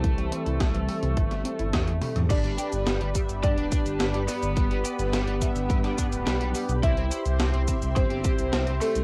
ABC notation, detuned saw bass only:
X:1
M:4/4
L:1/16
Q:1/4=106
K:G
V:1 name="Detuned saw bass" clef=bass
C,, C,, z C,, C,, C,, z C,, G,,, G,,, z G,,, E,, E,, z E,, | G,,, G,,, z G,,, G,,, G,,, z G,,, G,, D,,, z G,,, G,,, G,,, z G,,, | G,,, G,,, z G,,, G,,, G,,, z G,,, G,, G,, z D,,, B,,, B,,, z B,,, | C,, C,, z C,, C,, C,, z C,, G,,, G,,, z C,, C,, C,, z C,, |]